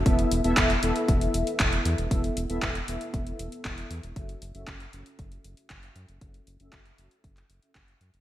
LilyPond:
<<
  \new Staff \with { instrumentName = "Analog polysynth" } { \time 4/4 \key fis \minor \tempo 4 = 117 <b e' a' e''>8. <b e' a' e''>8 r16 <b e' a' e''>2~ <b e' a' e''>8 | <b e' a' e''>8. <b e' a' e''>8 r16 <b e' a' e''>2~ <b e' a' e''>8 | <cis' fis' a' e''>8. <cis' fis' a' e''>8 r16 <cis' fis' a'>2~ <cis' fis' a'>8 | <cis' fis' a' e''>8. <cis' fis' a' e''>8 r16 <cis' fis' a' e''>4~ <cis' fis' a' e''>16 <cis' fis' a' e''>4~ <cis' fis' a' e''>16 | }
  \new Staff \with { instrumentName = "Analog synth bass" } { \clef bass \time 4/4 \key fis \minor e,,8 e,,16 e,,16 e,,8 e,,16 r16 e,,8 e,,16 r16 e,,8 e,16 e,,16 | e,,8 e,,16 e,,16 e,,8 e,,16 r16 e,,8 e,,16 r16 e,,8 e,16 e,,16 | fis,,8 fis,,16 fis,,16 fis,,8 fis,,16 r16 fis,,8 fis,,16 r16 fis,,8 fis,16 fis,,16 | fis,,8 fis,,16 fis,,16 fis,,8 fis,,16 r16 fis,,8 fis,,16 r16 fis,,8 fis,16 fis,,16 | }
  \new DrumStaff \with { instrumentName = "Drums" } \drummode { \time 4/4 <hh bd>16 hh16 hh16 hh16 <hc hh bd>16 hh16 hh16 hh16 <hh bd>16 hh16 hh16 hh16 <hc hh bd>16 hh16 hh16 hh16 | <hh bd>16 hh16 hh16 hh16 <hc hh bd>16 hh16 hh16 hh16 <hh bd>16 hh16 hh16 hh16 <hc hh bd>16 hh16 hh16 hh16 | <hh bd>16 hh16 hh16 hh16 <hc hh bd>16 hh16 hh16 hh16 <hh bd>16 hh16 hh16 hh16 <hc hh bd>16 hh16 hh16 hh16 | <hh bd>16 hh16 hh16 hh16 <hc hh bd>16 hh16 hh16 hh16 <hh bd>16 <hc hh>16 hh16 hh16 <hc hh bd>16 hh16 hh16 hh16 | }
>>